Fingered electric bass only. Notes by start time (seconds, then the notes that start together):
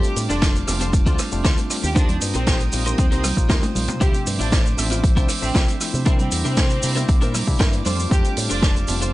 0.16 A2
0.29 F1
0.68 F1
1.06 D2
1.32 F1
1.45 D2
1.83 D#2
2.22 G2
2.35 A#1
2.73 A#1
2.98 D#2
3.12 C2
3.37 A#1
3.50 D#2
3.76 A#1
4.01 D2
4.27 G2
4.40 A1
4.78 A1
5.17 C2
5.42 A1
5.55 C2
5.94 C3
6.32 E2
6.45 C3
6.83 C3
7.09 C2
7.22 A#2
7.48 C3
7.60 G2
7.86 F2
8.11 F2
8.37 A2
8.50 F1
8.89 F1